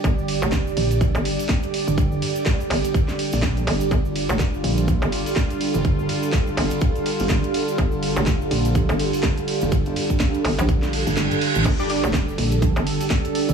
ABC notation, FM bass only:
X:1
M:4/4
L:1/16
Q:"Swing 16ths" 1/4=124
K:Gm
V:1 name="FM bass" clef=bass
G,,,3 F,,,3 z3 G,,,2 z4 z | z6 G,,, z6 z G,,,2 | G,,,3 F,,,3 z3 G,,,2 z4 z | z6 G,,, z8 z |
G,,,3 F,,,3 z3 G,,,2 z4 z | z6 G,,, B,,,4 z4 z | G,,,3 F,,,3 z3 G,,,2 z4 z |]